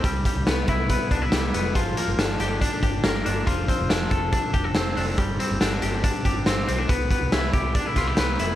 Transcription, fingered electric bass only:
\new Staff \with { instrumentName = "Fingered electric bass" } { \clef bass \time 4/4 \key c \major \tempo 4 = 140 c,8 r16 c,16 c,8 c,8. r16 c,8 c,8 f,,8 | g,,8 r16 g,,16 r8 g,,8. r16 g,,8 g,,8 g,,8 | f,,8 r16 f,,16 f,,8 f,,8. r16 f,,8 f,,8 f,,8 | g,,8 r16 g,,16 g,,8 g,,8. r16 g,,8 g,,8 b,,8 |
c,8 r16 c,16 c,8 c,8. r16 c,8 c,8 f,,8 | }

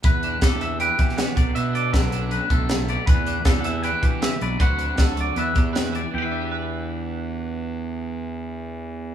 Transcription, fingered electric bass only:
\new Staff \with { instrumentName = "Fingered electric bass" } { \clef bass \time 4/4 \key e \minor \tempo 4 = 157 e,4 e,4. e4 b,,8 | b,4 b,,4. b,,4. | e,4 e,4. e4 b,,8 | d,4 d,4 e,8 e,4. |
e,1~ | e,1 | }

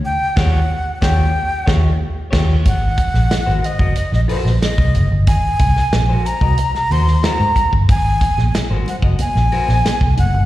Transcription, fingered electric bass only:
\new Staff \with { instrumentName = "Fingered electric bass" } { \clef bass \time 4/4 \key aes \major \tempo 4 = 92 r8 ees,8 r8 ees,8 r8 ees,8 r8 ees,8 | aes,,8. bes,,16 r16 aes,,16 r16 ges,,16 r16 bes,,16 r16 bes,,16 r16 c,16 ges,,16 g,,16 | aes,,16 r16 c,16 r16 bes,,8 r16 c,16 r8 ees,8 r16 aes,16 r16 g,,16 | aes,,8. bes,,16 r16 aes,,16 r16 ges,,16 r16 bes,,16 r16 bes,,16 r16 c,16 ges,,16 g,,16 | }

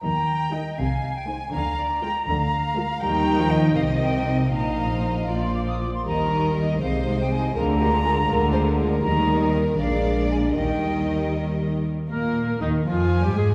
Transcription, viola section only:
\new Staff \with { instrumentName = "Viola section" } { \clef bass \time 6/8 \key ees \major \tempo 4. = 80 << { r4 ees'8 r4 ees'8 | r4 f'8 r4 f'8 | ees'4. ees'4. | ees'4. f'4 r8 |
ees'8 ees'8 ees'8 ees'8 ees'8 ees'8 | f'8 f'8 f'8 f'8 f'8 f'8 | ees'4. d'4. | ees'2~ ees'8 r8 |
bes4 ees8 f8. g16 aes8 | } \\ { r4 g8 r4 aes8 | r4 aes8 r4 aes8 | g8. f8. ees4. | f4. f4 r8 |
g8 g8 g8 aes8 aes8 aes8 | aes8 aes8 aes8 aes8 aes8 aes8 | g4. aes4. | g2~ g8 r8 |
r2. | } >> }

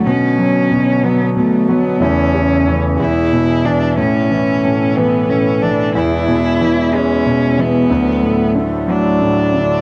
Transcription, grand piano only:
\new Staff \with { instrumentName = "Grand piano" } { \clef bass \time 6/8 \key a \major \tempo 4. = 61 b,8 fis8 b,8 fis8 b,8 fis8 | e,8 cis8 e8 e,8 b,8 e8 | a,8 e8 a,8 e8 a,8 e8 | e,8 b,8 e8 gis8 b,8 e8 |
d,8 a,8 d8 fis8 a,8 d8 | }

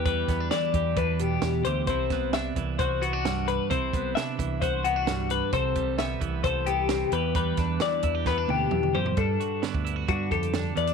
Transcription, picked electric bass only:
\new Staff \with { instrumentName = "Picked electric bass" } { \clef bass \time 4/4 \key g \major \tempo 4 = 132 e,8 e,8 r8 e,8 e,4 e,8 d,8 | c,8 c,4 c,8 c,2 | c,8 c,8 r8 c,8 c,2 | c,8 c,4 c,8 c,4. e,8~ |
e,8 e,8 r8 e,8 e,8 d,8 e,8 fis,8 | g,8 r8. d,8. g,8 f,4 e,8 | }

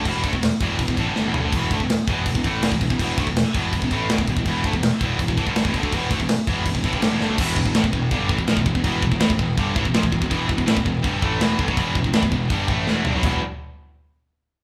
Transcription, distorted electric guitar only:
\new Staff \with { instrumentName = "Distorted electric guitar" } { \clef bass \time 4/4 \key e \minor \tempo 4 = 164 <e, b, e>8 <d a>16 <e, b,>8 r16 <e, b, e>8 <e, b,>16 <e, b,>16 <a, e>16 <g, d g>8 <e, b,>16 <g, d>16 <d a>16 | <e, b, e>8 <d a>16 <e, b,>8 r16 <e, b, e>8 <e, b,>16 <e, b,>16 <a, e a>8 <e, b,>16 <e, b,>16 <e, b,>16 <e, b,>16 | <e, b, e>8 <d a>16 <e, b,>8 r16 <e, b, e>8 <e, b,>16 <e, b,>16 <a, e a>8 <e, b,>16 <e, b,>16 <e, b,>16 <e, b,>16 | <e, b, e>8 <d a>16 <e, b,>8 r16 <e, b, e>8 <e, b,>16 <e, b,>16 <a, e>16 <g, d g>8 <e, b,>16 <g, d>16 <d a>16 |
<e, b, e>8 <d a>16 <e, b,>8 r16 <e, b, e>8 <e, b,>16 <e, b,>16 <a, e>16 <g, d g>8 <e, b,>16 <g, d>16 <d a>16 | <e, b, e>8 <e, b,>16 <e, b,>16 <a, e>16 <e, b,>16 <e, b,>8 <g, d g>8 <a, e>16 <e, b,>16 <ais, f>16 <e, b,>16 <e, b,>16 <e, b,>16 | <e, b, e>8 <e, b,>16 <e, b,>16 <a, e>16 <e, b,>16 <e, b,>8 <g, d g>8 <a, e>16 <e, b,>16 <ais, f>16 <e, b,>16 <e, b,>16 <e, b,>16 | <e, b, e>8 <e, b,>16 <e, b,>16 <a, e>16 <e, b,>16 <e, b,>8 <g, d g>8 <a, e a>8 <e, b, e>8 <g, d>16 <b, fis>16 |
<e, b, e>8 <e, b,>16 <e, b,>16 <a, e>16 <e, b,>16 <e, b,>8 <g, d g>8 <a, e a>8 <e, b, e>8 <g, d>16 <b, fis>16 | <e, b, e>8 r2. r8 | }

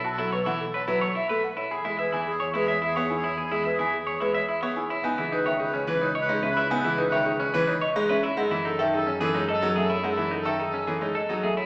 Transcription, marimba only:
\new Staff \with { instrumentName = "Marimba" } { \time 3/4 \key cis \minor \tempo 4 = 108 a''16 a'16 b'16 fis''16 a'16 cis''16 b'16 r16 e''16 a'16 fis''16 cis''16 | b''16 gis'16 b'16 gis''16 gis'16 cis''16 b'16 cis''16 e''16 gis'16 gis''16 cis''16 | b''16 gis'16 b'16 gis''16 gis'16 cis''16 b'16 cis''16 e''16 gis'16 gis''16 cis''16 | gis''16 gis'16 b'16 e''16 gis'16 cis''16 b'16 cis''16 r16 gis'16 e''16 cis''16 |
gis''16 gis'16 b'16 e''16 gis'16 cis''16 b'16 cis''16 dis''16 gis'16 e''16 cis''16 | fis''16 gis'16 a'16 e''16 gis'16 cis''16 a'16 cis''16 dis''16 gis'16 e''16 cis''16 | fis''16 gis'16 a'16 e''16 gis'16 cis''16 a'16 cis''16 dis''16 gis'16 e''16 cis''16 | }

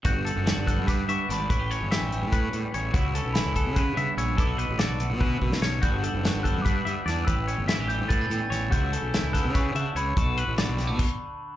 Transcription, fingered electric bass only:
\new Staff \with { instrumentName = "Fingered electric bass" } { \clef bass \time 7/8 \key g \lydian \tempo 4 = 145 g,,8. fis,,8 g,,8 g,8. g,16 r16 gis,,8 | a,,8. g,,8 a,,8 a,8. a,16 r16 a,,8 | cis,8. b,,8 cis,8 cis8. cis16 r16 ais,,8 | b,,8. a,,8 b,,8 b,8. b,16 r16 b,,8 |
g,,8. fis,,8 g,,8 g,8. g,16 r16 e,8 | a,,8. g,,8 a,,8 a,8. a,16 r16 a,,8 | cis,8. b,,8 cis,8 cis8. cis16 r16 cis,8 | b,,8. a,,8 b,,8 b,16 r4. | }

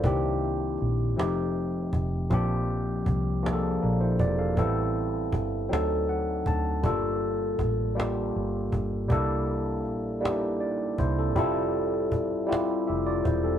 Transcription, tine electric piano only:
\new Staff \with { instrumentName = "Tine electric piano" } { \time 6/8 \key c \mixolydian \tempo 4. = 53 << { <e' c''>16 r2 r8. | r2 <d' bes'>16 <e' c''>16 <f' d''>16 <a' f''>16~ | <a' f''>16 r4. r16 fis''8 a''8 | r2. |
r2 d''8 <e' c''>16 <c' a'>16~ | <c' a'>16 r4. r16 <g' e''>16 <f' d''>16 <e' c''>16 <c' a'>16 | } \\ { <ees bes c' d' g'>4~ <ees bes c' d' g'>16 r16 <f a c' ees' g'>4~ <f a c' ees' g'>16 r16 | <f bes c' d' g'>4~ <f bes c' d' g'>16 r16 <f bes c' d' gis' a'>4~ <f bes c' d' gis' a'>16 r16 | <g b c' e' a'>4~ <g b c' e' a'>16 r16 <fis c' d' ees' a'>4~ <fis c' d' ees' a'>16 r16 | <g a bes d' f' a'>4~ <g a bes d' f' a'>16 r16 <g bes d' f' g'>4~ <g bes d' f' g'>16 r16 |
<g bes d' e' a'>4~ <g bes d' e' a'>16 r16 <g bes d' ees' e' g'>4~ <g bes d' ees' e' g'>16 r16 | <g c' e' f' a'>4~ <g c' e' f' a'>16 r16 <g c' e' f' g'>4~ <g c' e' f' g'>16 r16 | } >> }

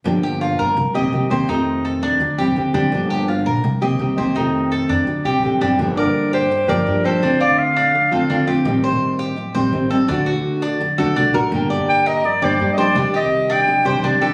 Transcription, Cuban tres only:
\new Staff \with { instrumentName = "Cuban tres" } { \time 4/4 \key g \minor \tempo 4 = 167 r8 g'8 f'8 bes'4 ees''4 c''8 | ees'4 a'8 d'4 g'4 d'8~ | d'8 g'8 f'8 bes'4 ees''4 c''8 | ees'4 a'8 d'4 g'4 d'8 |
r8 d''4 g'4 d''4 a'8 | d'8 f'4 d'4 a'8 d'8 g'8~ | g'8 c''4 g'4 c''4 a'8 | d'8 fis'4 d'4 a'8 d'8 bes'8~ |
bes'8 d''4 bes'4 d''4 c''8 | d'8 g'4 d'4 c''8 d'8 a'8 | }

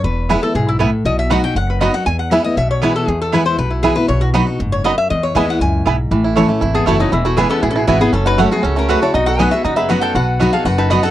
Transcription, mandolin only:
\new Staff \with { instrumentName = "Mandolin" } { \time 4/4 \key e \major \tempo 4 = 237 r4 <b e' b' gis''>8 r4. <b e' b' gis''>8 r8 | r4 <b fis' dis'' b''>8 r4. <b fis' dis'' b''>8 r8 | r4 <b e' b' gis''>8 r4. <b e' b' gis''>8 r8 | r4 <b e' b' gis''>8 r4. <b e' b' gis''>8 r8 |
r4 <b fis' dis'' b''>8 r4. <b fis' dis'' b''>8 r8 | r4 <b e' b' gis''>8 r4. <b e' b' gis''>8 r8 | r4 <a e' cis'' a''>8 r4. <a e' cis'' a''>8 r8 | r4 <b e' b' gis''>8 r4. <b e' b' gis''>8 r8 |
r4 <a fis' cis'' fis''>8 r4. <a fis' cis'' fis''>8 r8 | r4 <b fis' dis'' b''>8 r4. <b fis' dis'' b''>8 r8 | r4 <b fis' dis'' b''>8 r4. <b fis' dis'' b''>8 r8 | }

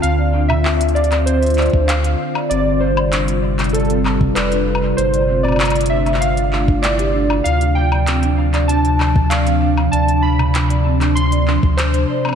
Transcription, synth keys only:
\new Staff \with { instrumentName = "Synth keys" } { \time 4/4 \key d \dorian \tempo 4 = 97 f''8. e''8. d''8 c''4 f''4 | d''8 c''4 r8 a'4 b'4 | c''8. d''8. e''8 f''4 d''4 | f''8 g''4 r8 a''4 f''4 |
a''8 b''4 r8 c'''4 c''4 | }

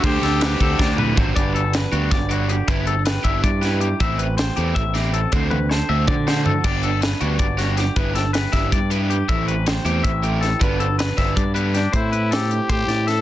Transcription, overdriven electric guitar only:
\new Staff \with { instrumentName = "Overdriven electric guitar" } { \time 7/8 \key g \major \tempo 4 = 159 <d a c' fis'>8 <a c' fis'>8 <d a c' fis'>8 <a c' fis'>8 <d a c' fis'>8 <a c' fis'>8 <d a c' fis'>8 | <g b d' g'>8 r4 <g b d' g'>8 r8 <g b d' g'>8 r8 | <g b e' g'>8 r4 <g b e' g'>8 r8 <g b e' g'>8 r8 | <e a c' e'>8 r4 <e a c' e'>8 r8 <e a c' e'>8 r8 |
<d a c' fis'>8 r4 <d a c' fis'>8 r8 <d a c' fis'>8 r8 | <g b d' g'>8 r4 <g b d' g'>8 r8 <g b d' g'>8 r8 | <g b e' g'>8 r4 <g b e' g'>8 r8 <g b e' g'>8 r8 | <e a c' e'>8 r4 <e a c' e'>8 r8 <e a c' e'>8 r8 |
<d g b d'>8 r4 <d g b d'>8 r8 <d g b d'>8 r8 | r2. r8 | }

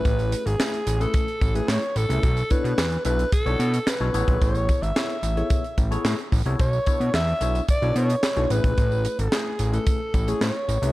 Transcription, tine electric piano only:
\new Staff \with { instrumentName = "Tine electric piano" } { \time 4/4 \key a \major \tempo 4 = 110 <a cis' e' gis' b'>8. r16 <a cis' e' gis' b'>16 r8 <a cis' e' gis' b'>8 r8 <a cis' e' gis' b'>8 r8 <a cis' e' gis' b'>16 | r8 <b d' e' a' cis''>8 r8 <b d' e' a' e''>16 r8 <b d' e' a' cis''>8 r8 <b d' e' a' cis''>16 <b e' gis' a' cis''>8~ | <b e' gis' a' cis''>8. r16 <b e' gis' a' cis''>16 r8 <b e' gis' a' cis''>8 r8 <b e' gis' a' cis''>8 r8 <b e' gis' a' cis''>16 | r8 <b d' e' a' cis''>8 r8 <b d' e' a' cis''>16 r8 <b d' e' a' cis''>8 r8 <b d' e' a' cis''>16 <a cis' e' gis' b'>8~ |
<a cis' e' gis' b'>8. r16 <a cis' e' gis' b'>16 r8 <a cis' e' gis' b'>8 r8 <a cis' e' gis' cis''>8 r8 <a cis' e' gis' b'>16 | }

